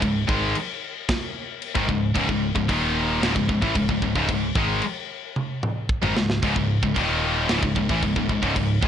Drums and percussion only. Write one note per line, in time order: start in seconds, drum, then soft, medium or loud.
0.02 kick medium
0.02 crash medium
0.29 kick loud
0.55 crash medium
1.09 kick loud
1.09 snare loud
1.09 crash medium
1.62 crash medium
1.75 kick loud
1.89 kick medium
2.16 kick loud
2.16 crash medium
2.29 kick medium
2.56 kick medium
2.69 kick loud
2.69 crash medium
3.23 snare loud
3.23 crash medium
3.36 kick loud
3.49 kick medium
3.62 kick medium
3.75 kick medium
3.75 crash medium
3.89 kick medium
4.02 kick medium
4.16 kick medium
4.29 kick loud
4.29 crash medium
4.55 kick loud
4.82 crash medium
5.36 high tom medium
5.63 mid tom medium
5.89 kick medium
6.03 mid tom medium
6.17 snare loud
6.30 snare loud
6.43 kick loud
6.43 crash medium
6.56 kick medium
6.83 kick medium
6.96 kick loud
6.96 crash medium
7.49 snare loud
7.49 crash medium
7.63 kick loud
7.76 kick medium
7.89 kick medium
8.02 kick loud
8.02 crash medium
8.16 kick medium
8.29 kick medium
8.43 kick medium
8.56 kick medium
8.56 crash medium
8.83 kick loud